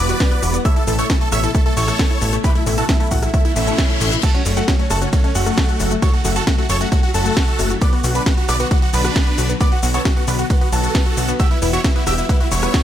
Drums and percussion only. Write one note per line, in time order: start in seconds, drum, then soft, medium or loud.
0.09 closed hi-hat medium
0.09 shaker soft
0.20 kick loud
0.20 snare loud
0.20 closed hi-hat medium
0.20 shaker soft
0.31 closed hi-hat soft
0.43 open hi-hat loud
0.43 shaker medium
0.54 closed hi-hat medium
0.54 shaker soft
0.65 kick loud
0.65 closed hi-hat medium
0.65 shaker soft
0.76 closed hi-hat soft
0.87 open hi-hat loud
0.87 shaker medium
0.99 closed hi-hat medium
0.99 shaker soft
1.10 kick loud
1.10 snare loud
1.10 closed hi-hat medium
1.10 shaker soft
1.21 closed hi-hat soft
1.32 cross-stick medium
1.32 open hi-hat loud
1.32 shaker medium
1.43 closed hi-hat medium
1.43 shaker soft
1.55 kick loud
1.55 closed hi-hat medium
1.55 shaker soft
1.66 closed hi-hat soft
1.77 open hi-hat loud
1.77 shaker medium
1.88 cross-stick medium
1.88 closed hi-hat medium
1.88 shaker soft
1.99 kick loud
1.99 snare loud
1.99 closed hi-hat medium
1.99 shaker soft
2.11 closed hi-hat soft
2.22 open hi-hat loud
2.22 shaker medium
2.33 closed hi-hat medium
2.33 shaker soft
2.44 kick loud
2.44 closed hi-hat medium
2.44 shaker soft
2.55 closed hi-hat soft
2.67 open hi-hat loud
2.67 shaker medium
2.78 closed hi-hat medium
2.78 shaker soft
2.89 kick loud
2.89 snare loud
2.89 closed hi-hat medium
2.89 shaker soft
3.00 closed hi-hat soft
3.11 kick medium
3.11 open hi-hat loud
3.11 shaker medium
3.22 cross-stick medium
3.22 closed hi-hat medium
3.22 shaker soft
3.34 kick loud
3.34 closed hi-hat medium
3.34 shaker soft
3.45 closed hi-hat soft
3.56 open hi-hat loud
3.56 shaker medium
3.67 closed hi-hat medium
3.67 shaker soft
3.78 kick loud
3.78 snare loud
3.78 closed hi-hat medium
3.78 shaker soft
3.90 closed hi-hat soft
4.01 open hi-hat loud
4.01 shaker medium
4.12 closed hi-hat medium
4.12 shaker soft
4.23 kick loud
4.23 closed hi-hat medium
4.23 ride medium
4.23 crash medium
4.23 shaker soft
4.34 closed hi-hat soft
4.46 open hi-hat loud
4.46 shaker medium
4.57 closed hi-hat medium
4.57 shaker soft
4.68 kick loud
4.68 snare loud
4.68 closed hi-hat medium
4.68 ride medium
4.68 shaker soft
4.79 closed hi-hat soft
4.90 cross-stick medium
4.90 open hi-hat loud
4.90 shaker medium
5.02 closed hi-hat medium
5.02 shaker soft
5.13 kick loud
5.13 closed hi-hat medium
5.13 ride medium
5.13 shaker soft
5.24 closed hi-hat soft
5.35 open hi-hat loud
5.35 shaker medium
5.46 cross-stick medium
5.46 closed hi-hat medium
5.46 shaker soft
5.58 kick loud
5.58 snare loud
5.58 closed hi-hat medium
5.58 ride medium
5.58 shaker soft
5.69 closed hi-hat soft
5.80 open hi-hat loud
5.80 shaker medium
5.91 closed hi-hat medium
5.91 shaker soft
6.02 kick loud
6.02 closed hi-hat medium
6.02 ride medium
6.02 shaker soft
6.14 closed hi-hat soft
6.25 open hi-hat loud
6.25 shaker medium
6.36 closed hi-hat medium
6.36 shaker soft
6.47 kick loud
6.47 snare loud
6.47 closed hi-hat medium
6.47 ride medium
6.47 shaker soft
6.58 closed hi-hat soft
6.70 open hi-hat loud
6.70 shaker medium
6.81 closed hi-hat medium
6.81 shaker soft
6.92 kick loud
6.92 closed hi-hat medium
6.92 ride medium
6.92 shaker soft
7.03 closed hi-hat soft
7.14 open hi-hat loud
7.14 shaker medium
7.25 closed hi-hat medium
7.25 shaker soft
7.37 kick loud
7.37 snare loud
7.37 closed hi-hat medium
7.37 ride medium
7.37 shaker soft
7.48 closed hi-hat soft
7.59 open hi-hat loud
7.59 shaker medium
7.70 closed hi-hat medium
7.70 shaker soft
7.81 kick loud
7.81 closed hi-hat medium
7.81 ride medium
7.81 shaker soft
7.93 closed hi-hat soft
8.04 open hi-hat loud
8.04 shaker medium
8.15 closed hi-hat medium
8.15 shaker soft
8.26 kick loud
8.26 snare loud
8.26 closed hi-hat medium
8.26 ride medium
8.26 shaker soft
8.37 closed hi-hat soft
8.49 cross-stick medium
8.49 open hi-hat loud
8.49 shaker medium
8.60 closed hi-hat medium
8.60 shaker soft
8.71 kick loud
8.71 closed hi-hat medium
8.71 ride medium
8.71 shaker soft
8.82 closed hi-hat soft
8.93 open hi-hat loud
8.93 shaker medium
9.05 cross-stick medium
9.05 closed hi-hat medium
9.05 shaker soft
9.16 kick loud
9.16 snare loud
9.16 closed hi-hat medium
9.16 ride medium
9.16 shaker soft
9.27 closed hi-hat soft
9.38 open hi-hat loud
9.38 shaker medium
9.49 closed hi-hat medium
9.49 shaker soft
9.61 kick loud
9.61 closed hi-hat medium
9.61 ride medium
9.61 shaker soft
9.72 closed hi-hat soft
9.83 open hi-hat loud
9.83 shaker medium
9.94 closed hi-hat medium
9.94 shaker soft
10.05 kick loud
10.05 snare loud
10.05 closed hi-hat medium
10.05 ride medium
10.05 shaker soft
10.17 closed hi-hat soft
10.28 open hi-hat loud
10.28 shaker medium
10.39 closed hi-hat medium
10.39 shaker soft
10.50 kick loud
10.50 closed hi-hat medium
10.50 ride medium
10.50 shaker soft
10.61 closed hi-hat soft
10.72 open hi-hat loud
10.72 shaker medium
10.84 closed hi-hat medium
10.84 shaker soft
10.95 kick loud
10.95 snare loud
10.95 closed hi-hat medium
10.95 ride medium
10.95 shaker soft
11.06 closed hi-hat soft
11.17 open hi-hat loud
11.17 shaker medium
11.28 closed hi-hat soft
11.28 shaker soft
11.40 kick loud
11.40 closed hi-hat medium
11.40 ride medium
11.40 shaker soft
11.51 closed hi-hat soft
11.62 open hi-hat loud
11.62 shaker medium
11.73 closed hi-hat medium
11.73 shaker soft
11.84 kick loud
11.84 snare loud
11.84 closed hi-hat medium
11.84 ride medium
11.84 shaker soft
11.96 closed hi-hat soft
12.07 cross-stick medium
12.07 open hi-hat loud
12.07 shaker medium
12.18 closed hi-hat medium
12.18 shaker soft
12.29 kick loud
12.29 closed hi-hat medium
12.29 ride medium
12.29 shaker soft
12.40 closed hi-hat soft
12.52 open hi-hat loud
12.52 shaker medium
12.63 cross-stick medium
12.63 closed hi-hat soft
12.63 shaker soft
12.74 kick loud
12.74 snare loud
12.74 closed hi-hat medium
12.74 ride medium
12.74 shaker soft